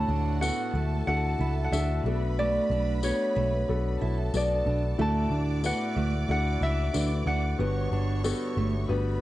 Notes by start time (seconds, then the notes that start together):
Already playing: A2 A3 D4 E4 F#4 A4 C#5 F#5 A5 B5
0.08 D2 D4
0.41 A3 B3 D4 E4 F#4 A4 F#5, tambourine
0.74 D2 A3 A4 A5
1.07 D2 A3 D4 E4 F#4 A4 F#5
1.39 C#2 E4
1.64 F#5
1.72 D2 A3 D4 E4 F#4 A4 E5, tambourine
2.04 B1 A3 B3 D4 F#4 A4 B4 B5
2.39 A3 D5
2.70 B1 D4
3.02 A3 B3 D4 F#4 B4 C#5, tambourine
3.36 B1 A3
3.68 B1 A3 B3 D4 F#4 A4
4.00 B1 E4 A4 A5
4.34 B1 A3 B3 D4 F#4 B4 D5, tambourine
4.66 B1 D4
4.98 D2 A2 A3 D4 E4 F#4 A4 D5 A5 D6
5.30 D2 D4
5.63 A3 B3 D4 E4 F#4 B4 F#5, tambourine
5.96 D2 A3
6.28 D2 A3 D4 E4 F#4 A4 F#5
6.61 C#2 E4 E5
6.93 D2 A3 D4 E4 F#4 B4, tambourine
7.26 D2 D4 F#5
7.58 G1 G2 D3 B3 D4 F#4 G4 B4 C#5 C#6
7.91 G1 D4
8.24 B3 D4 F#4 G4 A4, tambourine
8.57 G1 A3
8.88 G1 B3 D4 F#4 G4 B4 B5